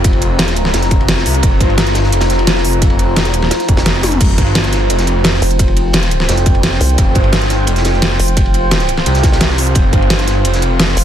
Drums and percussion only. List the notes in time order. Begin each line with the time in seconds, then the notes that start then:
0.04 kick, closed hi-hat, ride
0.13 ride
0.22 closed hi-hat, ride
0.39 snare, closed hi-hat, ride
0.48 snare, closed hi-hat
0.56 closed hi-hat, ride
0.65 snare, ride
0.73 snare, closed hi-hat, ride
0.82 snare, closed hi-hat
0.91 kick, closed hi-hat, ride
1.01 ride
1.08 snare, closed hi-hat, ride
1.18 snare
1.26 open hi-hat, ride
1.34 closed hi-hat
1.43 kick, closed hi-hat, ride
1.61 kick, closed hi-hat, ride
1.70 ride
1.78 snare, closed hi-hat, ride
1.86 snare, closed hi-hat
1.95 snare, closed hi-hat, ride
2.04 snare
2.12 closed hi-hat, ride
2.21 snare, closed hi-hat, ride
2.30 snare, closed hi-hat
2.39 ride
2.47 snare, closed hi-hat, ride
2.56 snare
2.65 open hi-hat
2.73 closed hi-hat
2.82 kick, closed hi-hat, ride
2.90 ride
2.99 closed hi-hat, ride
3.16 snare, closed hi-hat, ride
3.25 snare, closed hi-hat
3.33 closed hi-hat, ride
3.42 snare, ride
3.51 snare, closed hi-hat, ride
3.60 snare, closed hi-hat
3.68 kick, closed hi-hat, ride
3.77 snare, ride
3.86 snare, closed hi-hat
3.95 ride
4.03 snare, open hi-hat, high tom, ride
4.12 closed hi-hat, mid tom
4.21 kick, closed hi-hat, crash, ride
4.38 kick, closed hi-hat, ride
4.46 ride
4.55 snare, closed hi-hat, ride
4.64 snare, closed hi-hat
4.73 snare, closed hi-hat, ride
4.90 closed hi-hat, ride
4.99 snare, closed hi-hat
5.07 closed hi-hat, ride
5.24 snare, closed hi-hat, ride
5.34 snare
5.42 open hi-hat, ride
5.51 closed hi-hat
5.59 kick, closed hi-hat, ride
5.68 ride
5.77 closed hi-hat, ride
5.93 snare, closed hi-hat, ride
6.03 snare, closed hi-hat
6.11 closed hi-hat, ride
6.20 snare, ride
6.29 snare, closed hi-hat, ride
6.37 snare, closed hi-hat
6.46 kick, closed hi-hat, ride
6.55 ride
6.63 snare, closed hi-hat, ride
6.72 snare
6.80 open hi-hat, ride
6.89 closed hi-hat
6.98 kick, closed hi-hat, ride
7.15 kick, closed hi-hat, ride
7.24 ride
7.33 snare, closed hi-hat, ride
7.41 snare, closed hi-hat
7.50 snare, closed hi-hat, ride
7.67 closed hi-hat, ride
7.76 snare, closed hi-hat
7.85 snare, closed hi-hat, ride
7.94 snare
8.02 snare, closed hi-hat, ride
8.19 open hi-hat, ride
8.28 closed hi-hat
8.37 kick, closed hi-hat, ride
8.46 ride
8.54 closed hi-hat, ride
8.71 snare, closed hi-hat, ride
8.80 snare, closed hi-hat
8.89 closed hi-hat, ride
8.97 snare, ride
9.06 closed hi-hat, ride
9.15 snare, closed hi-hat
9.23 kick, snare, closed hi-hat, ride
9.32 snare, ride
9.40 snare, closed hi-hat, ride
9.49 snare
9.58 open hi-hat, ride
9.67 closed hi-hat
9.75 kick, closed hi-hat, ride
9.93 kick, closed hi-hat, ride
10.02 ride
10.10 snare, closed hi-hat, ride
10.19 snare, closed hi-hat
10.27 snare, closed hi-hat, ride
10.45 closed hi-hat, ride
10.54 snare, closed hi-hat
10.62 closed hi-hat, ride
10.80 snare, closed hi-hat, ride
10.88 snare
10.97 open hi-hat, ride